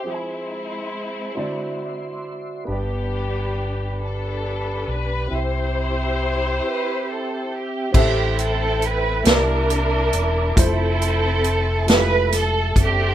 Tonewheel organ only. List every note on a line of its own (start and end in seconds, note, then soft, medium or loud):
0.00 1.32 C5 soft
0.00 2.64 C6 soft
0.05 1.36 G#4 soft
1.37 2.67 F#4 soft
1.37 5.27 D5 soft
1.37 2.67 E5 soft
2.67 7.89 G4 soft
2.67 5.28 B4 soft
2.67 5.28 B5 soft
5.31 7.91 C4 soft
5.31 7.91 E5 soft
5.31 7.92 G5 medium
7.95 9.25 A4 medium
7.95 13.14 E5 soft
7.95 9.25 G5 soft
9.26 10.56 A#4 medium
9.26 10.56 A5 medium
9.26 10.56 D6 medium
10.57 13.14 A4 medium